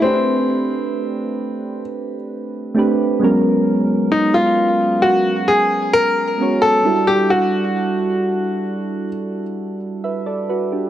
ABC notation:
X:1
M:4/4
L:1/16
Q:1/4=66
K:Edor
V:1 name="Grand piano"
=C8 z8 | z2 ^D ^E3 F2 ^G2 ^A3 =A2 =G | F8 z8 |]
V:2 name="Synth keys"
[A,=CDGB]6- [A,CDGB] z4 z [A,CDGB]2 [F,^G,B,^C^A]2- | [F,^G,B,C^A]4- [F,G,B,CA] z6 z [G,B,CFc]2 [=G,DEF=A]2- | [G,DEFA]4- [G,DEFA] z6 z [Be] [Ad] [FB] [DG] |]